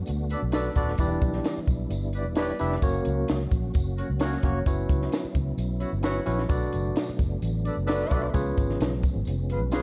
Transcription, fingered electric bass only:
0.09 0.34 D2 loud
0.42 0.68 B1 medium
0.76 0.93 D#1 loud
0.99 1.16 E1 loud
1.22 1.39 B1 loud
1.58 muted fingered electric bass stroke soft
1.68 1.85 B1 medium
1.90 2.25 G1 medium
2.25 2.51 E1 medium
2.61 2.78 F1 medium
2.82 3.00 F#1 loud
3.06 3.23 C#2 loud
3.30 3.46 C#2 loud
3.52 3.69 A#1 medium
3.76 4.01 F#1 medium
4.10 4.35 C#2 medium
4.43 4.61 F1 medium
4.66 4.84 F#1 loud
4.89 5.07 C#2 medium
5.25 muted fingered electric bass stroke soft
5.35 5.52 C#2 medium
5.57 5.84 B1 medium
5.93 6.18 G1 medium
6.27 6.44 A#1 medium
6.74 6.91 F#1 medium
7.09 muted fingered electric bass stroke medium
7.19 7.36 F#1 medium
7.42 7.68 A1 loud
7.77 8.03 F#1 medium
8.11 8.28 B1 medium
8.34 8.51 C#2 loud
8.58 8.75 G#1 medium
8.81 9.06 B1 loud
9.16 9.24 G#1 medium
9.27 9.61 F1 loud
9.61 9.82 B1 medium

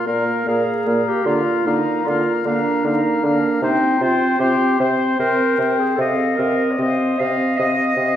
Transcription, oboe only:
0.07 0.47 F5 soft
0.48 0.86 F5 soft
0.88 1.26 F5 soft
1.27 1.65 F5 soft
1.67 2.05 F5 soft
2.08 2.46 F5 soft
2.47 2.85 F5 medium
2.87 3.24 F5 soft
3.25 3.63 F5 soft
3.64 4.01 C5 soft
4.03 4.40 C5 soft
4.41 4.79 C5 medium
4.80 5.18 C5 soft
5.19 5.57 C5 medium
5.60 5.98 C5 soft
6.01 6.38 D#5 medium
6.40 6.79 D#5 soft
6.82 7.19 D#5 medium
7.22 7.59 D#5 medium
7.60 7.97 D#5 medium
7.99 8.16 D#5 soft

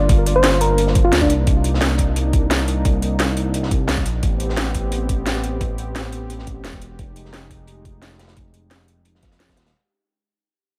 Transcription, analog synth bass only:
0.09 1.12 G1 loud
1.13 1.31 D2 medium
1.30 1.45 C2 medium
1.47 2.84 C2 loud
2.85 3.88 C2 loud
3.89 4.04 C2 medium
4.06 4.21 A#1 medium
4.23 5.60 A1 medium
5.61 6.64 A1 medium
6.65 6.80 E1 medium
6.82 6.97 E1 medium
6.99 8.36 F1 medium
8.37 9.40 F1 medium
9.40 9.56 F1 medium
9.58 9.73 D#1 medium

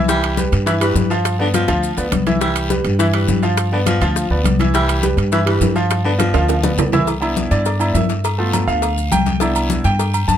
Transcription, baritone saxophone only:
0.09 0.41 G3 loud
0.66 0.74 E3 medium
0.81 1.14 E3 medium
1.41 1.48 D3 medium
1.54 2.07 F3 medium
2.41 2.74 G3 medium
2.99 3.07 E3 medium
3.14 3.47 E3 medium
3.72 3.80 D3 medium
3.87 4.40 F3 medium
4.75 5.07 G3 medium
5.32 5.40 E3 medium
5.48 5.80 E3 medium
6.04 6.12 D3 medium
6.18 6.72 F3 medium

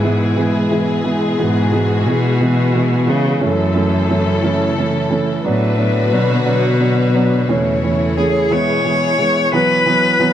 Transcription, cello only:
0.00 1.01 G#2 medium
1.40 2.08 G#2 medium
2.07 3.11 B2 medium
3.09 3.45 C#3 medium
3.44 5.12 F#2 medium
5.45 6.15 A2 medium
6.13 6.45 B2 medium
6.45 8.11 B2 loud
8.17 8.54 G#4 medium
8.52 9.52 C#5 medium
9.54 10.33 B4 loud

